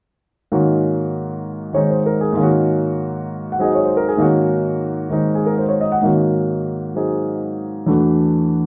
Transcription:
0.52 G#2 D#3 A#3 C#4 F#4
1.73 D#3 G#3 C4 D#4 C#5
1.91 C5
2.06 A#4
2.21 G#4
2.32 G#2 D#3
2.37 A#3 C#4
2.43 F#4
3.52 F#5
3.58 F#3 C4 D#4 G#4
3.64 D#5
3.75 C#5
3.85 C5
3.97 A#4
4.08 G#4
4.17 G#2 D#3 A#3 C#4
4.22 F#4
5.10 D#3 G#3 C4 D#4
5.35 G#4
5.46 A#4
5.58 C5
5.69 C#5
5.81 D#5
5.92 F#5
6.02 G#2 D#3 A#3 C#4
6.06 F#4
6.94 F#3 C4 D#4 G#4
7.87 E2 E3 A3 D4 F#4

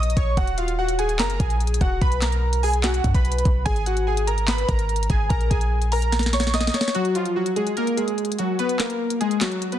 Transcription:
Already playing: A#1 D#5 D#6
0.03 closed hi-hat
0.10 closed hi-hat
0.17 A#1 C#5 C#6, kick, closed hi-hat
0.37 D#1 F#4 F#5, kick, closed hi-hat
0.47 closed hi-hat
0.58 F4 F5, closed hi-hat
0.68 closed hi-hat
0.79 F#4 F#5
0.89 closed hi-hat
0.99 G#4 G#5, closed hi-hat
1.09 closed hi-hat
1.19 F#1 A#4 A#5, snare, clap, closed hi-hat
1.30 closed hi-hat
1.40 A#1 G#4 G#5, kick, closed hi-hat
1.50 closed hi-hat
1.60 closed hi-hat
1.67 closed hi-hat
1.74 closed hi-hat
1.81 D#1 F#4 F#5, kick, closed hi-hat
2.01 B1 B4 B5, kick, closed hi-hat
2.12 closed hi-hat
2.22 A#4 A#5, snare, clap, closed hi-hat
2.32 closed hi-hat
2.53 closed hi-hat
2.63 G#4 G#5, open hi-hat
2.73 closed hi-hat
2.83 F#4 F#5, snare, clap, closed hi-hat
2.94 closed hi-hat
3.04 F#2, kick, closed hi-hat
3.14 B1 B4 B5, kick, closed hi-hat
3.25 closed hi-hat
3.32 closed hi-hat
3.38 closed hi-hat
3.45 B1, kick, closed hi-hat
3.66 G#1 G#4 G#5, kick, closed hi-hat
3.76 closed hi-hat
3.86 F#4 F#5, closed hi-hat
3.97 closed hi-hat
4.07 G#4 G#5
4.17 closed hi-hat
4.27 A#4 A#5, closed hi-hat
4.38 closed hi-hat
4.48 B4 B5, snare, clap, closed hi-hat
4.58 closed hi-hat
4.69 G#1 A#4 A#5, kick, closed hi-hat
4.79 closed hi-hat
4.89 closed hi-hat
4.96 closed hi-hat
5.03 closed hi-hat
5.10 G#1 G#4 G#5, kick, closed hi-hat
5.30 A#1 A#4 A#5, kick, closed hi-hat
5.41 closed hi-hat
5.50 A#1 G#4 G#5, kick, closed hi-hat
5.61 closed hi-hat
5.82 closed hi-hat
5.92 A#4 A#5, closed hi-hat, open hi-hat
6.02 closed hi-hat
6.12 snare, closed hi-hat
6.19 snare, closed hi-hat
6.26 snare
6.33 C#5 C#6, snare, closed hi-hat
6.40 snare, closed hi-hat
6.47 snare
6.54 D#5 D#6, snare, closed hi-hat
6.61 snare, closed hi-hat
6.67 snare, closed hi-hat
6.74 C#5 C#6, snare, closed hi-hat
6.81 snare
6.88 snare
6.95 F#3 F#4, closed hi-hat
7.05 closed hi-hat
7.15 F3 F4, closed hi-hat
7.25 closed hi-hat
7.36 F#3 F#4
7.46 closed hi-hat
7.56 G#3 G#4, closed hi-hat
7.67 closed hi-hat
7.77 A#3 A#4, closed hi-hat
7.87 closed hi-hat
7.97 G#3 G#4, closed hi-hat
8.08 closed hi-hat
8.18 closed hi-hat
8.25 closed hi-hat
8.32 closed hi-hat
8.39 F#3 F#4, closed hi-hat
8.59 B3 B4, closed hi-hat
8.69 closed hi-hat
8.79 A#3 A#4, snare, clap, closed hi-hat
8.90 closed hi-hat
9.10 closed hi-hat
9.21 G#3 G#4, closed hi-hat
9.31 closed hi-hat
9.41 F#3 F#4, snare, clap, closed hi-hat
9.52 closed hi-hat
9.62 closed hi-hat
9.72 B3 B4, closed hi-hat

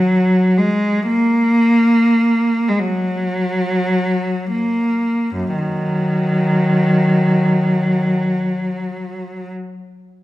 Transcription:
Already playing: F#3
0.57 G#3
1.07 A#3
2.68 G#3
2.79 F#3
4.50 A#3
5.34 F#2
5.58 D#3 F#3

